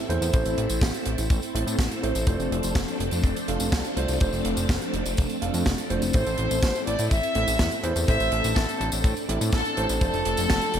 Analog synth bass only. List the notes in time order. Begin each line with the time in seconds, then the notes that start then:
0.09 E2
0.21 E2
0.34 A1
0.46 A1
0.58 A1
0.70 A1
0.81 A1
1.06 A1
1.18 A1
1.30 A1
1.55 A1
1.67 A2
1.79 A1
2.03 A1
2.15 A1
2.27 F1
2.39 F1
2.51 F1
2.63 F1
2.75 F1
3.00 F1
3.12 F2
3.24 F1
3.48 F1
3.60 F1
3.72 C2
3.97 C2
4.09 C2
4.21 F1
4.33 F1
4.45 F1
4.57 F1
4.69 F1
4.93 F1
5.05 F1
5.18 F1
5.42 F1
5.54 F2
5.66 F1
5.90 F1
6.02 F1
6.14 A1
6.26 A1
6.38 A1
6.51 A1
6.63 A1
6.87 A1
6.99 A2
7.11 A1
7.35 A1
7.47 A1
7.59 E2
7.84 E2
7.96 E2
8.08 A1
8.20 A1
8.32 A1
8.44 A1
8.56 A1
8.80 A1
8.93 A1
9.04 A1
9.29 A1
9.41 A2
9.53 A1
9.77 A1
9.89 A1
10.01 F1
10.14 F1
10.26 F1
10.38 F1
10.50 F1
10.74 F1